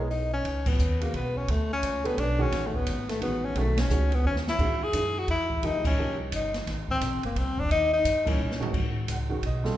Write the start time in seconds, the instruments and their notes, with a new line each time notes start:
Already playing: upright bass B1
0.10 tenor saxophone D#4, open hi-hat
0.33 tenor saxophone C#4
0.45 upright bass C#2, kick, ride
0.66 tenor saxophone B3, kick, crash
0.79 upright bass D#2, hi-hat pedal
1.00 grand piano G#3 C#4 F#4 B4, tenor saxophone A#3, ride
1.13 upright bass B1, tenor saxophone B3, kick, ride
1.38 tenor saxophone C#4
1.48 upright bass D2, tenor saxophone A3, kick, ride
1.73 tenor saxophone C#4
1.83 upright bass C#2, kick, hi-hat pedal, ride
2.04 grand piano A3 D4 G4 B4, tenor saxophone B3, ride
2.17 upright bass B1, tenor saxophone D4, kick, ride
2.38 grand piano D#3 G#3 C#4 F#4, tenor saxophone C#4
2.52 upright bass A1, kick, snare, ride
2.67 tenor saxophone A3
2.74 tenor saxophone B3, kick
2.87 upright bass G#1, kick, hi-hat pedal, ride
3.09 tenor saxophone A3, snare, ride
3.21 upright bass A1, grand piano D#3 G#3 C#4 F#4, tenor saxophone B3, kick, ride
3.45 tenor saxophone C#4
3.55 upright bass B1, grand piano D#3 G#3 C#4 F#4, tenor saxophone A3, kick, ride
3.77 tenor saxophone C#4, snare, ride
3.89 upright bass C#2, grand piano D#3 G#3 C#4 F#4, hi-hat pedal
4.12 tenor saxophone B3, ride
4.24 upright bass D#2, tenor saxophone C#4
4.36 snare
4.47 tenor saxophone E4, snare
4.59 upright bass E2, grand piano D#3 G#3 C#4 F#4, kick, crash
4.84 tenor saxophone G#4
4.93 upright bass F#2, grand piano D#3 G#3 C#4 E4, kick, hi-hat pedal, ride
5.19 tenor saxophone F#4
5.28 upright bass E2, tenor saxophone E4, kick, ride
5.50 kick
5.63 upright bass D#2, grand piano F3 A#3 D#4 G4, tenor saxophone D#4, kick, ride
5.74 upright bass C#2
5.85 upright bass A#1, tenor saxophone C#4, kick, crash
5.97 upright bass C2, grand piano F3 A#3 D#4 G4
6.32 upright bass G1, tenor saxophone D#4, kick, hi-hat pedal, ride
6.54 snare, ride
6.67 upright bass G#1, kick, snare, ride
6.88 tenor saxophone C4, kick
7.01 upright bass A#1, kick, hi-hat pedal, ride
7.13 upright bass G#1
7.23 upright bass F1, tenor saxophone A#3, ride
7.35 upright bass C2, tenor saxophone C4, kick, ride
7.48 upright bass G#1
7.58 upright bass F1, tenor saxophone D4, kick
7.70 upright bass D#2, tenor saxophone D#4, kick, ride
7.93 tenor saxophone D#4
8.04 upright bass G2, kick, hi-hat pedal, ride
8.25 grand piano G3 A#3 C#4 E4, tenor saxophone C#4, kick, crash
8.39 upright bass A#2
8.51 snare
8.60 grand piano D#3 G#3 C#4 F#4, muted upright bass stroke, floor tom
8.73 upright bass G#2, kick, crash
9.08 upright bass C#2, grand piano F#5, kick, hi-hat pedal, ride
9.29 grand piano D#3 G#3 C#4 F#4
9.42 upright bass B1, kick, ride
9.46 grand piano D#5
9.64 grand piano G3 C4 F4 A4, snare